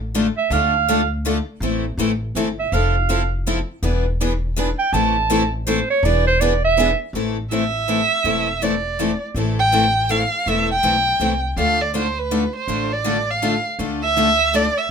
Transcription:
Already playing: A1
0.15 D3 A3 D4 F4 A4
0.37 E5
0.50 D2 D3 A3 D4 F4 A4 F5
0.89 D3 A3 D4 F4 A4
1.26 D3 A3 D4 F4 A4
1.60 A1 E3 A3 C4 E4 A4
1.97 A1 E3 A3 C4 E4 A4
2.35 G1 E3 A3 C4 E4 A4
2.59 E5
2.72 F1 F3 C4 E4 A4 F5
3.09 F3 C4 E4 A4
3.47 F3 C4 E4 A4
3.83 E1 E3 B3 D4 G#4 B4
4.21 E3 B3 D4 G#4 B4
4.58 E3 B3 D4 G#4 B4
4.79 G5
4.93 A1 E3 A3 C4 E4 A4 A5
5.31 E3 A3 C4 E4 A4
5.66 E3 A3 C4 E4 A4 C5
5.90 C#5
6.03 E1 E3 B3 D4 G#4 B4 D5
6.27 C5
6.41 E3 B3 D4 G#4 B4 D5
6.64 E5
6.77 E3 B3 D4 G#4 B4
7.13 A1 E3 A3 C4 E4 A4
7.51 E3 A3 C4 E4 A4 E5
7.88 E3 A3 C4 E4 A4
8.24 E1 E3 A3 C4 E4 A4
8.63 E3 A3 C4 E4 A4 D5
8.99 E3 A3 C4 E4 A4
9.35 A1 E3 A3 C4 E4 A4
9.59 G5
9.73 E3 A3 C4 E4 A4
10.10 E3 A3 C4 E4 A4 F5
10.46 E1 E3 A3 C4 E4 A4 E5
10.71 G5
10.83 B1 E3 A3 C4 E4 A4
11.20 C2 E3 A3 C4 E4 A4
11.57 D2 D3 A3 D4 F4 A4 F5
11.82 D5
11.95 D3 A3 D4 F4 A4 C5
12.19 B4
12.31 D3 A3 D4 F4 A4
12.56 C5
12.68 A1 D3 A3 D4 F4 A4
12.92 D5
13.05 D3 A3 D4 F4 A4
13.31 F5
13.42 D3 A3 D4 F4 A4
13.79 D2 D3 A3 D4 F4 A4
14.04 E5
14.16 D3 A3 D4 F4 A4
14.53 D3 A3 D4 F4 A4 D5
14.78 E5

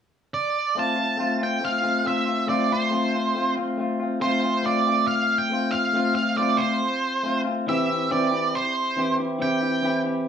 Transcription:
0.34 D5
0.75 A3 C4 F4
0.79 A5
0.96 C4 F4
1.17 A3 C4 F4
1.39 C4 F4
1.43 G5
1.60 A3 C4 F4
1.65 F5
1.81 A3 C4 F4
2.04 A3 C4 F4 E5
2.26 C4 F4
2.47 A3 C4 F4 D5
2.68 C4 F4
2.72 C5
2.91 A3 C4 F4
3.13 C4 F4
3.35 A3 C4 F4
3.56 A3 C4 F4
3.77 A3 C4 F4
4.00 C4 F4
4.20 A3 C4 F4 C5
4.43 C4 F4
4.63 A3 C4 F4 D5
4.85 C4 F4
5.08 F5
5.38 G5
5.50 A3 C4 F4
5.71 F4 F5
5.76 C4
5.93 A3 C4 F4
6.15 C4 F4 F5
6.36 A3 C4 F4 D5
6.57 F4 C5
6.62 C4
7.23 A3 C4 F4
7.45 C4 F4
7.67 E3 C4 E4 G4 E5
7.88 C4 E4 G4
8.10 E3 C4 E4 G4 D5
8.31 C4 E4 G4
8.55 C5
8.96 E3 C4 E4 G4
9.17 C4 E4 G4
9.39 E3 C4 E4 G4 G5
9.61 C4 E4 G4
9.82 E3 C4 E4 G4
10.04 C4 E4 G4

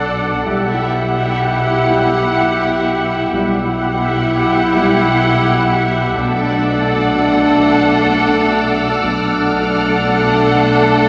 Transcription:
Already playing: B1 B2 D4 A4 D5 F#5
0.45 B1 B2 G3 E4 G4 E5 F#5
1.88 G3 E4
3.31 B1 B2 G3 E4 G4 E5 F#5
4.74 G3 E4
6.16 B1 B2 A3 D4 A4 D5 F#5 D6 E6
7.62 F6
9.02 B1 B2 A3 D4 A4 D5 F#5

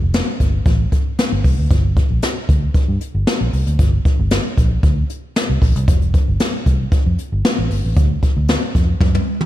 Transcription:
0.02 F1
0.14 snare, closed hi-hat
0.40 G1, kick, closed hi-hat
0.66 A1, kick, closed hi-hat
0.92 kick, closed hi-hat
1.19 snare, closed hi-hat
1.32 G1
1.44 C2, kick, open hi-hat
1.58 D2
1.71 G1, kick, closed hi-hat
1.97 kick, closed hi-hat
2.10 A#1
2.22 snare, closed hi-hat
2.49 D2, kick, closed hi-hat
2.74 muted fingered electric bass stroke, kick, closed hi-hat
2.88 G2
3.01 closed hi-hat
3.15 G1
3.27 snare, closed hi-hat
3.41 A#1
3.53 C2, open hi-hat
3.67 D2, closed hi-hat
3.79 G1, kick, closed hi-hat
4.05 kick, closed hi-hat
4.19 G1
4.31 snare, closed hi-hat
4.57 A#1, kick, closed hi-hat
4.83 D2, kick, closed hi-hat
5.10 closed hi-hat
5.36 snare, closed hi-hat
5.50 C2
5.62 A#1, kick, open hi-hat
5.76 C2, closed hi-hat
5.88 F1, kick, closed hi-hat
6.02 closed hi-hat
6.14 kick, closed hi-hat
6.28 G1
6.40 snare, closed hi-hat
6.66 C2, kick, closed hi-hat
6.92 muted fingered electric bass stroke, kick, closed hi-hat
7.06 F2
7.19 closed hi-hat
7.32 G1
7.45 snare, closed hi-hat
7.59 A1
7.71 G1, open hi-hat
7.84 A1
7.97 D2, kick, closed hi-hat
8.23 kick, closed hi-hat
8.37 D2
8.49 snare, closed hi-hat
8.75 F2, kick, closed hi-hat
9.01 F#2, kick, high tom
9.15 high tom
9.41 mid tom

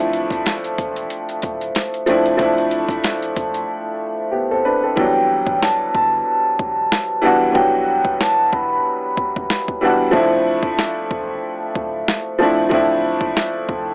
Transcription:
Already playing: D1 F3 A3 C4 D4 E4
0.00 closed hi-hat
0.13 closed hi-hat
0.30 F1, kick, closed hi-hat
0.46 snare, closed hi-hat
0.64 E1, closed hi-hat
0.78 E1, kick, closed hi-hat
0.96 closed hi-hat
1.10 closed hi-hat
1.29 closed hi-hat
1.42 D1, kick, closed hi-hat
1.61 closed hi-hat
1.75 snare, closed hi-hat
1.94 closed hi-hat
2.06 F3 A3 C4 D4, closed hi-hat
2.11 E4
2.26 D#1, closed hi-hat
2.37 D1 F3 A3 C4 D4, kick, closed hi-hat
2.41 E4
2.58 closed hi-hat
2.71 closed hi-hat
2.89 E1, kick, closed hi-hat
3.04 snare, closed hi-hat
3.23 F1, closed hi-hat
3.36 F1, kick, closed hi-hat
3.54 closed hi-hat
4.31 B3 G4
4.51 C4 A4
4.65 D4 B4
4.83 C4 A4
4.96 E1 E3 G3 B3 D4 G5, kick
5.00 F#3
5.47 A1, kick
5.63 A5, snare
5.81 G1
5.95 G1 A5, kick
6.59 E1, kick
6.92 snare
7.22 E3 G3 B3 D4
7.26 F#4
7.42 F1
7.51 E3 G3 B3 D4 G5
7.55 E1 F#3, kick
8.05 D1, kick
8.21 A5, snare
8.39 E1
8.52 E1 B5, kick
9.17 kick
9.36 E1, kick
9.50 snare
9.68 kick
9.81 D#1 E3 G3 B3 D4
9.85 F#4
10.11 D1 F3 A3 C4 D4, kick
10.16 E4
10.63 F1, kick
10.79 snare
10.97 E1
11.11 E1, kick
11.75 D1, kick
12.08 snare
12.38 F3 A3 C4 D4
12.43 E4
12.58 D#1
12.69 D1 F3 A3 C4 D4, kick
12.74 E4
13.21 E1, kick
13.37 snare
13.55 F1
13.69 F1, kick

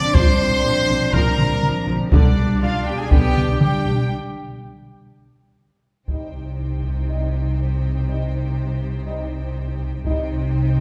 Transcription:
Already playing: F3 C4 D4 D5 D6
0.13 A#1 F3 G3 C5 C6, taiko
0.39 A#1 C4
0.64 A#1 F3 A#3
0.89 A#1 C4
1.12 A#1 F3 G3 A#4 A#5, taiko
1.38 A#1 C4, taiko mid
1.63 F3, taiko mid
1.87 A#1 C4, taiko mid
2.11 B1 D3 G3 D4 D5, taiko
2.37 B1 G3
2.61 B1 D3 D4 F4 F5
2.85 B1 G3 G4 G5
2.97 G#4 G#5
3.09 B1 D3 B3 G4 G5, taiko
3.36 B1 G3, taiko mid
3.60 G3 G4 G5, taiko mid
3.85 B1 G3, taiko mid
6.08 C2 C3 G3 D#4 C5 G5, taiko
6.83 taiko
7.09 G3 D#4
8.08 G3 D#4
9.07 G3 D#4
10.05 C2 C3 G3 D#4 C5 G5, taiko

